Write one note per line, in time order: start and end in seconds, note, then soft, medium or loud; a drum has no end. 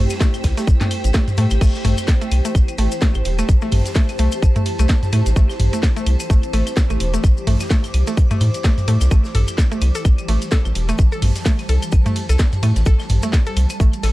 0.00 1.62 A3 medium
0.00 1.60 E4 medium
0.00 14.12 G4 medium
0.00 14.12 C5 loud
0.00 2.41 G5 medium
0.10 snare medium
0.10 closed hi-hat medium
0.10 claves soft
0.10 maracas medium
0.20 0.26 A3 medium
0.20 kick loud
0.20 snare loud
0.20 snare medium
0.20 shaker medium
0.20 maracas medium
0.34 snare soft
0.34 closed hi-hat soft
0.34 claves medium
0.34 maracas soft
0.44 0.53 C2 loud
0.44 kick medium
0.44 snare loud
0.44 open hi-hat medium
0.44 ride medium
0.44 claves soft
0.44 shaker medium
0.57 0.60 A3 medium
0.57 snare loud
0.57 closed hi-hat medium
0.57 shaker medium
0.57 maracas medium
0.67 0.77 A1 loud
0.67 kick loud
0.67 shaker medium
0.67 maracas medium
0.81 0.85 A3 medium
0.81 snare medium
0.81 closed hi-hat soft
0.81 mid tom medium
0.81 claves soft
0.81 maracas soft
0.91 open hi-hat medium
0.91 ride medium
0.91 claves medium
0.91 shaker medium
1.04 1.11 A1 loud
1.04 closed hi-hat medium
1.04 closed hi-hat soft
1.04 maracas medium
1.14 1.18 A3 medium
1.14 kick loud
1.14 snare loud
1.14 claves soft
1.14 maracas medium
1.14 shaker medium
1.27 snare soft
1.27 closed hi-hat soft
1.27 mid tom medium
1.27 maracas soft
1.37 1.47 A2 medium
1.37 1.43 A3 medium
1.37 snare medium
1.37 open hi-hat medium
1.37 ride medium
1.37 shaker medium
1.50 1.58 A1 medium
1.50 snare soft
1.50 closed hi-hat medium
1.50 claves medium
1.50 maracas medium
1.61 1.70 A1 loud
1.61 14.12 E3 medium
1.61 1.64 A3 medium
1.61 9.14 E4 medium
1.61 kick loud
1.61 crash medium
1.61 claves soft
1.61 shaker medium
1.61 maracas medium
1.75 snare medium
1.75 maracas soft
1.85 1.94 A1 loud
1.85 1.90 A3 medium
1.85 mid tom loud
1.85 open hi-hat medium
1.85 ride medium
1.85 shaker medium
1.98 closed hi-hat medium
1.98 claves medium
1.98 maracas medium
2.08 kick loud
2.08 snare loud
2.08 maracas medium
2.08 shaker loud
2.21 2.24 A3 medium
2.21 closed hi-hat soft
2.21 maracas soft
2.32 2.41 C2 loud
2.32 open hi-hat medium
2.32 ride medium
2.32 claves soft
2.32 shaker medium
2.39 6.16 A5 medium
2.45 2.49 A3 medium
2.45 closed hi-hat medium
2.45 closed hi-hat soft
2.45 maracas medium
2.55 2.64 A1 medium
2.55 kick loud
2.55 claves medium
2.55 shaker loud
2.55 maracas medium
2.68 closed hi-hat soft
2.68 claves soft
2.68 maracas soft
2.78 2.88 A1 loud
2.78 2.82 A3 medium
2.78 open hi-hat medium
2.78 ride medium
2.78 shaker medium
2.92 closed hi-hat medium
2.92 maracas medium
3.01 3.07 A3 medium
3.01 kick loud
3.01 snare loud
3.01 claves soft
3.01 maracas medium
3.01 shaker medium
3.14 3.22 A1 medium
3.14 closed hi-hat soft
3.14 claves medium
3.14 maracas soft
3.25 3.42 E1 medium
3.25 snare soft
3.25 open hi-hat medium
3.25 ride medium
3.25 shaker medium
3.39 3.41 A3 medium
3.39 closed hi-hat medium
3.39 claves soft
3.39 maracas medium
3.49 3.58 A1 loud
3.49 kick loud
3.49 maracas medium
3.49 shaker medium
3.62 3.66 A3 medium
3.62 maracas soft
3.72 3.81 A1 loud
3.72 mid tom loud
3.72 open hi-hat medium
3.72 open hi-hat loud
3.72 ride medium
3.72 claves medium
3.86 snare medium
3.86 closed hi-hat medium
3.86 maracas medium
3.95 3.99 A3 medium
3.95 kick loud
3.95 snare loud
3.95 maracas medium
3.95 shaker medium
4.09 snare soft
4.09 closed hi-hat soft
4.09 claves soft
4.09 maracas soft
4.18 4.28 C2 loud
4.18 4.25 A3 medium
4.18 open hi-hat loud
4.18 ride medium
4.18 shaker medium
4.32 closed hi-hat medium
4.32 claves medium
4.32 maracas medium
4.42 4.52 A1 medium
4.42 kick loud
4.42 claves soft
4.42 shaker medium
4.42 maracas medium
4.56 4.58 A3 medium
4.56 closed hi-hat soft
4.56 mid tom loud
4.56 maracas soft
4.66 open hi-hat loud
4.66 ride medium
4.66 shaker medium
4.78 4.86 C2 medium
4.78 4.83 A3 medium
4.78 closed hi-hat soft
4.78 closed hi-hat medium
4.78 claves soft
4.78 maracas medium
4.89 kick loud
4.89 snare loud
4.89 claves medium
4.89 maracas medium
4.89 shaker medium
5.03 snare soft
5.03 closed hi-hat soft
5.03 mid tom medium
5.03 maracas soft
5.12 5.22 A2 loud
5.12 5.16 A3 medium
5.12 snare soft
5.12 open hi-hat loud
5.12 ride medium
5.12 claves soft
5.12 shaker medium
5.26 5.33 A1 medium
5.26 snare soft
5.26 closed hi-hat medium
5.26 maracas medium
5.36 5.45 A1 loud
5.36 5.42 A3 medium
5.36 kick loud
5.36 shaker medium
5.36 maracas medium
5.50 snare medium
5.50 claves medium
5.50 maracas soft
5.60 5.69 A1 loud
5.60 mid tom medium
5.60 open hi-hat loud
5.60 ride medium
5.60 shaker medium
5.73 5.76 A3 medium
5.73 closed hi-hat medium
5.73 maracas medium
5.83 kick loud
5.83 snare medium
5.83 snare loud
5.83 claves soft
5.83 shaker medium
5.83 maracas medium
5.96 6.01 A3 medium
5.96 closed hi-hat soft
5.96 maracas soft
6.06 6.16 C2 loud
6.06 open hi-hat loud
6.06 ride medium
6.06 claves medium
6.06 shaker medium
6.14 9.91 D6 medium
6.20 closed hi-hat medium
6.20 closed hi-hat soft
6.20 claves soft
6.20 maracas medium
6.30 6.39 A1 medium
6.30 6.33 A3 medium
6.30 kick loud
6.30 shaker medium
6.30 maracas medium
6.43 closed hi-hat soft
6.43 maracas soft
6.53 6.63 A1 loud
6.53 6.59 A3 medium
6.53 open hi-hat medium
6.53 ride medium
6.53 claves soft
6.53 shaker medium
6.67 closed hi-hat medium
6.67 claves medium
6.67 maracas medium
6.76 kick loud
6.76 snare loud
6.76 snare medium
6.76 shaker medium
6.76 maracas medium
6.90 6.97 A1 medium
6.90 6.93 A3 medium
6.90 closed hi-hat soft
6.90 claves soft
6.90 maracas soft
7.00 7.17 E1 medium
7.00 snare soft
7.00 open hi-hat loud
7.00 ride medium
7.00 shaker medium
7.14 7.18 A3 medium
7.14 closed hi-hat medium
7.14 maracas medium
7.24 7.33 A1 loud
7.24 kick loud
7.24 claves medium
7.24 shaker medium
7.24 maracas medium
7.37 maracas soft
7.47 7.56 A1 loud
7.47 7.50 A3 medium
7.47 mid tom medium
7.47 open hi-hat loud
7.47 open hi-hat medium
7.47 ride medium
7.60 snare medium
7.60 closed hi-hat medium
7.60 claves soft
7.60 maracas medium
7.70 7.76 A3 medium
7.70 kick loud
7.70 snare medium
7.70 snare loud
7.70 maracas medium
7.70 shaker medium
7.84 snare soft
7.84 closed hi-hat soft
7.84 claves medium
7.84 maracas soft
7.94 8.03 C2 loud
7.94 open hi-hat loud
7.94 ride medium
7.94 claves soft
7.94 shaker medium
8.07 8.10 A3 medium
8.07 closed hi-hat soft
8.07 maracas medium
8.17 kick loud
8.17 maracas medium
8.17 shaker medium
8.31 8.35 A3 medium
8.31 closed hi-hat soft
8.31 mid tom medium
8.31 claves soft
8.31 maracas soft
8.41 8.50 A2 medium
8.41 open hi-hat medium
8.41 ride medium
8.41 claves medium
8.41 shaker medium
8.54 closed hi-hat medium
8.54 closed hi-hat soft
8.54 maracas medium
8.64 8.68 A3 medium
8.64 kick loud
8.64 snare loud
8.64 snare medium
8.64 claves soft
8.64 maracas medium
8.64 shaker medium
8.77 snare soft
8.77 closed hi-hat soft
8.77 mid tom medium
8.77 maracas soft
8.88 8.97 A2 loud
8.88 8.93 A3 medium
8.88 snare soft
8.88 open hi-hat loud
8.88 ride medium
8.88 shaker medium
9.01 9.08 C2 loud
9.01 snare soft
9.01 closed hi-hat medium
9.01 claves medium
9.01 maracas medium
9.11 9.20 A1 loud
9.11 14.12 G3 medium
9.11 9.14 A3 medium
9.11 kick loud
9.11 claves soft
9.11 shaker medium
9.11 maracas medium
9.25 snare medium
9.25 maracas soft
9.35 9.44 A1 loud
9.35 9.38 A4 medium
9.35 mid tom medium
9.35 open hi-hat loud
9.35 ride medium
9.35 shaker medium
9.48 closed hi-hat medium
9.48 claves medium
9.48 maracas medium
9.58 kick loud
9.58 snare loud
9.58 snare medium
9.58 shaker loud
9.58 maracas medium
9.72 9.74 A3 medium
9.72 closed hi-hat soft
9.72 maracas soft
9.81 9.91 C2 loud
9.81 open hi-hat loud
9.81 ride medium
9.81 claves soft
9.81 shaker medium
9.89 13.66 A5 medium
9.95 9.97 A4 medium
9.95 closed hi-hat medium
9.95 closed hi-hat soft
9.95 maracas medium
10.05 10.14 A1 medium
10.05 kick loud
10.05 claves medium
10.05 maracas medium
10.05 shaker medium
10.18 closed hi-hat soft
10.18 claves soft
10.18 maracas soft
10.28 10.38 A1 loud
10.28 10.32 A3 medium
10.28 open hi-hat medium
10.28 ride medium
10.28 shaker medium
10.42 closed hi-hat medium
10.42 maracas medium
10.51 10.55 A4 medium
10.51 kick loud
10.51 snare loud
10.51 snare medium
10.51 claves soft
10.51 maracas medium
10.51 shaker medium
10.65 10.72 A1 medium
10.65 closed hi-hat soft
10.65 claves medium
10.65 maracas soft
10.75 10.93 E1 medium
10.75 snare soft
10.75 open hi-hat medium
10.75 ride medium
10.75 shaker medium
10.89 10.91 A3 medium
10.89 closed hi-hat medium
10.89 claves soft
10.89 maracas medium
10.98 11.08 A1 loud
10.98 kick loud
10.98 shaker medium
10.98 maracas medium
11.12 11.15 A4 medium
11.12 maracas soft
11.22 11.31 A1 loud
11.22 mid tom medium
11.22 open hi-hat medium
11.22 ride medium
11.22 claves medium
11.36 snare medium
11.36 closed hi-hat medium
11.36 maracas medium
11.45 11.49 A3 medium
11.45 kick loud
11.45 snare loud
11.45 snare medium
11.45 maracas medium
11.45 shaker medium
11.59 snare soft
11.59 closed hi-hat soft
11.59 claves soft
11.59 maracas soft
11.69 11.78 C2 loud
11.69 11.72 A4 medium
11.69 open hi-hat medium
11.69 ride medium
11.69 shaker medium
11.82 closed hi-hat medium
11.82 claves medium
11.82 maracas medium
11.92 12.02 A1 medium
11.92 kick loud
11.92 claves soft
11.92 maracas medium
11.92 shaker loud
12.06 12.08 A3 medium
12.06 closed hi-hat soft
12.06 mid tom medium
12.06 maracas soft
12.16 open hi-hat medium
12.16 ride medium
12.16 shaker medium
12.29 12.36 C2 medium
12.29 12.32 A4 medium
12.29 closed hi-hat medium
12.29 closed hi-hat soft
12.29 claves soft
12.29 maracas medium
12.39 kick loud
12.39 snare medium
12.39 snare loud
12.39 claves medium
12.39 shaker medium
12.39 maracas medium
12.52 snare soft
12.52 closed hi-hat soft
12.52 mid tom medium
12.52 maracas soft
12.63 12.72 A2 loud
12.63 12.66 A3 medium
12.63 snare medium
12.63 open hi-hat medium
12.63 ride medium
12.63 claves soft
12.63 shaker medium
12.76 12.83 A1 medium
12.76 snare medium
12.76 closed hi-hat medium
12.76 maracas medium
12.86 12.95 A1 loud
12.86 12.90 A4 medium
12.86 kick loud
12.86 shaker loud
12.86 maracas medium
12.99 snare medium
12.99 claves medium
12.99 maracas soft
13.09 13.19 A1 loud
13.09 mid tom medium
13.09 open hi-hat medium
13.09 ride medium
13.09 shaker medium
13.22 13.26 A3 medium
13.22 closed hi-hat medium
13.22 maracas medium
13.32 kick loud
13.32 snare loud
13.32 snare medium
13.32 claves soft
13.32 maracas medium
13.32 shaker medium
13.46 13.49 A4 medium
13.46 closed hi-hat soft
13.46 maracas soft
13.56 13.66 C2 loud
13.56 open hi-hat medium
13.56 ride medium
13.56 claves medium
13.56 shaker medium
13.64 14.12 D6 medium
13.70 closed hi-hat medium
13.70 closed hi-hat soft
13.70 claves soft
13.70 maracas medium
13.80 13.89 A1 medium
13.80 13.83 A3 medium
13.80 kick loud
13.80 shaker loud
13.80 maracas medium
13.93 closed hi-hat soft
13.93 maracas soft
14.03 14.12 A1 loud
14.03 14.07 A4 medium
14.03 snare loud
14.03 open hi-hat medium
14.03 ride medium
14.03 claves soft
14.03 shaker medium